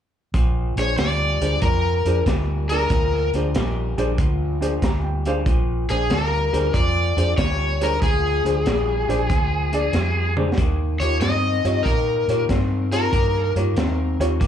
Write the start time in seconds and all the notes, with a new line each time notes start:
0.34 A#1 A#2 F3, kick, closed hi-hat
0.76 A#1 A#2 F3 D4 G#4 C5 C#5, closed hi-hat
0.98 D2 A#2 G3 D5, snare, closed hi-hat
1.41 D2 A#2 G3 D4 G#4 C5, closed hi-hat
1.61 F2 A#2 F3 A#4, kick, closed hi-hat
2.05 F2 A#2 F3 D4 G#4 C5, closed hi-hat
2.26 D2 A#2 G3, kick, snare, closed hi-hat
2.69 A#2 G3 D4 G#4 A#4, closed hi-hat
2.90 D2 A#2 F3, kick, closed hi-hat
3.34 D2 A#2 F3 D4 G#4 C5, closed hi-hat
3.55 A#1 A#2 G3, snare, closed hi-hat
3.98 A#1 A#2 G3 D4 G#4 C5, closed hi-hat
4.18 D2 A#2 F3, kick, closed hi-hat
4.61 A#2 F3 D4 G#4 C5, closed hi-hat
4.82 D2 A#2 G3 A#5, kick, snare, closed hi-hat
5.04 G5
5.25 A#2 G3 D4 G#4 C5 F5, closed hi-hat
5.46 A#1 A#2 F3, kick, closed hi-hat
5.89 A#1 A#2 F3 D4 G#4 C5, closed hi-hat
6.10 D2 A#2 G3 A#4, snare, closed hi-hat
6.53 D2 A#2 G3 D4 G#4 C5, closed hi-hat
6.74 F2 A#2 F3 D5, kick, closed hi-hat
7.17 F2 A#2 F3 D4 G#4 C5, closed hi-hat
7.37 D2 A#2 G3 C#5, kick, snare, closed hi-hat
7.81 A#2 G3 D4 G#4 A#4 C5, closed hi-hat
8.01 D2 A#2 F3 G#4, kick, closed hi-hat
8.44 D2 A#2 F3 D4 G#4 C5, closed hi-hat
8.65 A#1 A#2 G3, snare, closed hi-hat
9.08 A#1 A#2 G3 D4 G#4 C5, closed hi-hat
9.29 D2 A#2 F3, kick, closed hi-hat
9.72 A#2 F3 D4 G#4 D5, closed hi-hat
9.93 F2 A#2 G3, snare, closed hi-hat
10.37 A#2 G3 D4 G#4 C5, high tom
10.52 snare
10.57 D#2 D#3 A#3, kick, closed hi-hat
11.00 D#2 D#3 A#3 F4 G4 C#5, closed hi-hat
11.20 G2 D#3 C4 D#5, snare, closed hi-hat
11.64 G2 D#3 C4 F4 G4 C#5, closed hi-hat
11.83 A#2 D#3 A#4, kick, closed hi-hat
11.87 A#3, snare
12.28 A#2 D#3 A#3 F4 G4 C#5, closed hi-hat
12.49 G2 D#3 C4, kick, snare, closed hi-hat
12.91 D#3 C4 F4 G4 A#4 C#5, closed hi-hat
13.12 G2 D#3 A#3, kick, closed hi-hat
13.55 G2 D#3 A#3 F4 G4 C#5, closed hi-hat
13.76 D#2 D#3 C4, snare, closed hi-hat
14.19 D#2 D#3 C4 F4 G4 C#5, closed hi-hat
14.40 G2 D#3 A#3, kick, closed hi-hat